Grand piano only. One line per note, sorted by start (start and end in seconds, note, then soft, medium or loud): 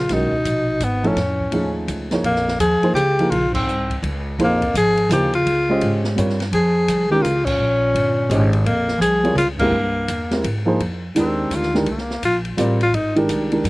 0.10 0.30 D#3 medium
0.10 0.31 G#3 soft
0.10 0.31 C#4 soft
0.10 0.31 F#4 medium
0.10 0.32 A#4 medium
1.03 1.16 F3 medium
1.03 1.16 A3 medium
1.03 1.16 C#4 medium
1.03 1.16 D#4 medium
1.03 1.16 A4 medium
1.52 2.06 F3 medium
1.52 2.07 A3 soft
1.52 2.07 C#4 soft
1.52 2.07 D#4 medium
1.52 2.07 G#4 medium
2.11 2.23 F3 medium
2.11 2.24 A#3 medium
2.11 2.23 D#4 medium
2.11 2.24 G#4 medium
2.11 2.24 C#5 medium
2.83 2.95 F3 medium
2.83 2.95 A#3 medium
2.83 2.95 D#4 medium
2.83 2.95 G#4 medium
2.83 2.95 C5 medium
3.19 3.31 F3 medium
3.19 3.31 A#3 medium
3.19 3.31 D#4 medium
3.19 3.31 G#4 medium
3.19 3.31 A#4 medium
4.39 4.59 F3 medium
4.39 4.59 A#3 medium
4.39 4.60 D#4 medium
4.39 4.60 G#4 medium
4.39 4.60 C5 medium
5.09 5.30 F3 medium
5.09 5.31 A#3 medium
5.09 5.31 D#4 medium
5.09 5.31 G#4 medium
5.09 5.31 C5 medium
5.69 6.15 G#3 medium
5.69 6.15 C#4 medium
5.69 6.16 G4 medium
5.69 6.16 C5 medium
5.69 6.16 D#5 medium
6.16 6.37 G3 medium
6.16 6.37 C4 medium
6.16 6.37 F4 medium
6.16 6.38 A#4 medium
6.16 6.38 C#5 medium
7.11 7.23 D#3 medium
7.11 7.23 G#3 medium
7.11 7.23 C#4 medium
7.11 7.23 G4 medium
7.11 7.23 A#4 medium
8.29 8.50 G#3 medium
8.29 8.51 C#4 medium
8.29 8.51 G4 medium
8.29 8.51 C5 medium
8.29 8.51 D#5 medium
9.23 9.36 G3 medium
9.23 9.36 C4 medium
9.23 9.36 F4 medium
9.23 9.37 A#4 medium
9.23 9.37 C#5 medium
9.60 9.72 G#3 medium
9.60 9.72 C4 medium
9.60 9.73 E4 medium
9.60 9.73 G4 medium
9.60 9.73 A#4 medium
10.31 10.43 G#3 medium
10.31 10.44 C4 medium
10.31 10.44 E4 medium
10.31 10.44 G4 medium
10.31 10.44 A#4 medium
10.66 10.78 F3 medium
10.66 10.78 A#3 medium
10.66 10.78 D#4 medium
10.66 10.79 G#4 medium
10.66 10.79 C5 medium
11.15 11.69 D#3 medium
11.15 11.69 G#3 medium
11.15 11.69 D4 medium
11.15 11.70 G4 medium
11.15 11.70 A#4 medium
11.74 11.86 D#3 medium
11.74 11.86 G#3 medium
11.74 11.86 D4 medium
11.74 11.86 G4 medium
11.74 11.86 A#4 medium
12.57 12.78 G3 medium
12.57 12.78 C4 medium
12.57 12.78 F4 medium
12.57 12.79 A#4 medium
12.57 12.79 D5 medium
13.15 13.49 D#3 medium
13.15 13.49 G#3 medium
13.15 13.49 D4 medium
13.15 13.50 G4 medium
13.15 13.50 A#4 medium
13.52 13.63 D#3 medium
13.52 13.64 G#3 medium
13.52 13.64 D4 medium
13.52 13.64 G4 medium
13.52 13.64 A#4 medium